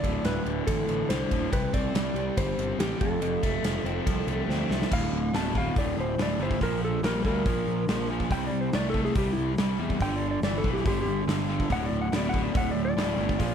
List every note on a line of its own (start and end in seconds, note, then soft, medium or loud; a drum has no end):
0.00 0.17 D1 medium
0.00 0.23 D2 medium
0.00 0.88 A2 medium
0.00 1.55 D4 medium
0.00 0.26 D5 medium
0.00 kick medium
0.04 ride medium
0.24 0.38 D1 medium
0.24 0.66 D2 medium
0.24 0.66 B4 medium
0.24 snare loud
0.24 ride medium
0.46 0.60 D1 medium
0.46 1.09 D3 medium
0.46 ride medium
0.67 0.81 A1 medium
0.67 1.51 D2 medium
0.67 1.11 A4 medium
0.67 kick medium
0.67 ride medium
0.88 1.02 A1 medium
0.88 1.30 A2 medium
0.88 ride medium
1.09 1.24 C2 medium
1.09 1.53 D3 medium
1.09 1.53 C5 medium
1.09 snare loud
1.09 ride medium
1.31 1.45 D1 medium
1.31 1.53 A2 medium
1.31 kick medium
1.31 ride medium
1.52 1.67 C2 medium
1.52 2.58 C3 medium
1.52 1.73 B4 medium
1.52 kick loud
1.52 ride medium
1.73 1.88 C2 medium
1.73 2.57 C4 medium
1.73 2.39 D5 medium
1.73 kick medium
1.73 ride medium
1.95 2.09 C2 medium
1.95 2.36 G3 medium
1.95 snare loud
1.95 ride medium
2.14 2.29 C2 medium
2.14 2.78 G4 medium
2.14 ride medium
2.37 2.51 G1 medium
2.37 3.01 G3 medium
2.37 2.77 C5 medium
2.37 kick medium
2.37 ride medium
2.58 2.72 G1 medium
2.58 3.01 C4 medium
2.58 ride medium
2.79 2.93 A1 medium
2.79 3.01 G4 medium
2.79 snare loud
2.79 ride medium
3.00 3.15 F1 medium
3.00 3.20 F2 medium
3.00 4.45 A4 medium
3.00 kick loud
3.00 ride medium
3.21 3.35 F1 medium
3.21 4.28 F2 medium
3.21 ride medium
3.43 3.57 F1 medium
3.43 4.27 A3 medium
3.43 kick medium
3.43 ride medium
3.63 3.78 F1 medium
3.63 4.05 F3 medium
3.63 snare medium
3.63 ride medium
3.84 3.99 F1 medium
3.84 4.48 C4 medium
3.84 ride medium
4.06 4.21 C2 medium
4.06 4.91 F3 medium
4.06 kick loud
4.06 ride medium
4.27 4.41 C2 medium
4.27 4.69 A3 medium
4.27 ride medium
4.48 4.62 D2 medium
4.48 4.92 C4 medium
4.48 snare medium
4.69 4.84 C2 medium
4.69 4.92 A3 medium
4.69 snare medium
4.82 snare medium
4.91 5.10 D1 medium
4.91 5.29 D2 medium
4.91 5.30 A2 medium
4.91 5.34 F5 medium
4.91 kick loud
4.91 crash loud
5.11 5.30 D1 medium
5.32 5.69 D1 medium
5.32 5.53 D2 medium
5.32 5.53 B2 medium
5.32 5.55 A5 medium
5.32 snare medium
5.32 open hi-hat soft
5.55 5.74 D2 medium
5.55 5.74 B2 medium
5.55 5.77 F5 medium
5.55 kick medium
5.76 5.94 D1 medium
5.76 6.14 D2 medium
5.76 6.14 A2 medium
5.76 5.98 D5 medium
5.76 kick loud
5.76 open hi-hat medium
5.97 6.15 D1 medium
5.97 6.20 C5 medium
6.18 6.36 D1 medium
6.18 6.38 D2 medium
6.18 6.38 A2 medium
6.18 snare loud
6.18 open hi-hat medium
6.22 6.41 D5 medium
6.38 6.57 G1 medium
6.38 6.59 D2 medium
6.38 6.59 A2 medium
6.43 6.62 C5 medium
6.51 kick medium
6.61 6.97 A#1 medium
6.61 6.99 A#2 medium
6.61 7.00 F3 medium
6.61 6.83 A#4 medium
6.61 kick medium
6.61 open hi-hat soft
6.85 7.04 A4 medium
7.02 7.21 A#1 medium
7.02 7.23 A#2 medium
7.02 7.23 G3 loud
7.02 7.25 A#4 medium
7.02 snare loud
7.02 open hi-hat soft
7.24 7.43 D2 medium
7.24 7.44 A#2 medium
7.24 7.44 G3 medium
7.24 8.07 A#4 medium
7.24 kick medium
7.45 7.64 A#1 medium
7.45 7.84 A#2 medium
7.45 7.84 F3 medium
7.45 kick loud
7.45 open hi-hat medium
7.67 7.85 A#1 medium
7.88 8.24 A#1 medium
7.88 8.07 A#2 medium
7.88 8.07 F3 medium
7.88 snare loud
7.88 open hi-hat medium
8.10 8.29 A#2 medium
8.10 8.29 F3 medium
8.20 kick medium
8.30 8.48 C2 medium
8.30 8.69 C3 medium
8.30 8.69 G3 medium
8.30 8.45 G5 loud
8.30 kick loud
8.30 open hi-hat medium
8.47 8.60 D5 medium
8.52 8.70 C2 medium
8.61 8.74 C5 medium
8.73 9.09 C2 medium
8.73 8.92 C3 loud
8.73 8.92 A3 medium
8.73 8.88 D5 loud
8.73 snare medium
8.73 open hi-hat soft
8.90 9.02 A4 medium
8.94 9.13 C3 medium
8.94 9.13 A3 medium
8.94 kick medium
9.05 9.17 G#4 medium
9.05 snare soft
9.15 9.34 C2 medium
9.15 9.54 C3 medium
9.15 9.54 G3 loud
9.15 9.31 G4 medium
9.15 kick loud
9.15 open hi-hat medium
9.33 9.52 E4 medium
9.37 9.55 C2 medium
9.58 9.76 C2 medium
9.58 9.77 C3 medium
9.58 9.77 G3 medium
9.58 snare loud
9.58 open hi-hat medium
9.79 9.97 E2 medium
9.79 9.98 C3 medium
9.79 9.98 G3 medium
9.90 kick medium
10.00 10.36 G1 medium
10.00 10.39 G2 medium
10.00 10.39 D3 medium
10.00 10.15 G5 loud
10.00 kick medium
10.00 open hi-hat medium
10.16 10.29 D5 medium
10.31 10.43 D5 medium
10.42 10.60 G1 medium
10.42 10.62 G2 medium
10.42 10.63 E3 loud
10.42 10.57 D5 loud
10.42 snare medium
10.42 open hi-hat medium
10.58 10.71 A4 medium
10.64 10.82 B1 medium
10.64 10.83 G2 medium
10.64 10.83 E3 medium
10.64 kick medium
10.73 10.86 G4 medium
10.73 snare soft
10.85 11.03 G1 medium
10.85 11.23 G2 medium
10.85 11.24 D3 medium
10.85 11.00 G4 medium
10.85 kick loud
10.85 open hi-hat medium
11.02 11.24 G1 medium
11.02 11.21 G4 medium
11.27 11.63 G1 medium
11.27 11.47 G2 medium
11.27 11.47 D3 medium
11.27 snare medium
11.27 open hi-hat medium
11.49 11.68 G2 medium
11.49 11.68 D3 medium
11.60 kick medium
11.69 11.88 D1 medium
11.69 12.08 D2 medium
11.69 12.08 A2 medium
11.69 11.85 F#5 loud
11.69 kick medium
11.69 open hi-hat medium
11.86 11.99 D5 medium
11.90 12.09 D1 medium
12.01 12.14 F#5 medium
12.12 12.49 D1 medium
12.12 12.31 D2 medium
12.12 12.31 B2 loud
12.12 12.28 D5 medium
12.12 snare medium
12.12 open hi-hat soft
12.29 12.52 D2 medium
12.29 12.42 F#5 loud
12.34 12.53 B2 medium
12.34 kick medium
12.44 12.56 D5 medium
12.54 12.73 D1 medium
12.54 12.93 D2 medium
12.54 12.93 A2 loud
12.54 12.70 F#5 loud
12.54 kick loud
12.54 open hi-hat medium
12.71 12.93 D1 medium
12.71 12.84 D5 medium
12.85 13.54 D5 loud
12.96 13.15 D1 medium
12.96 13.16 D2 medium
12.96 13.16 A2 medium
12.96 snare loud
12.96 open hi-hat medium
13.17 13.36 G1 medium
13.17 13.37 D2 medium
13.17 13.38 A2 medium
13.29 kick medium
13.39 13.54 A#1 medium
13.39 13.54 A#2 medium
13.39 13.54 F3 medium
13.39 kick medium
13.39 open hi-hat medium